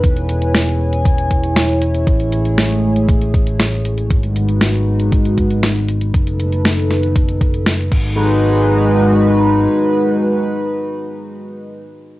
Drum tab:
CC |----------------|----------------|----------------|--------------x-|
HH |xxxxxx-xxxxxxxxx|xxxxxx-xxxxxxxxx|xxxxxx-xxxxxxxxx|xxxxxxxxxxxxxx--|
SD |----o-------o---|----o-------o---|----o-------o---|----o-o-----o---|
BD |o-------o-o-----|o-------o-o-----|o-------o-o-----|o-------o-o---o-|

CC |----------------|----------------|
HH |----------------|----------------|
SD |----------------|----------------|
BD |----------------|----------------|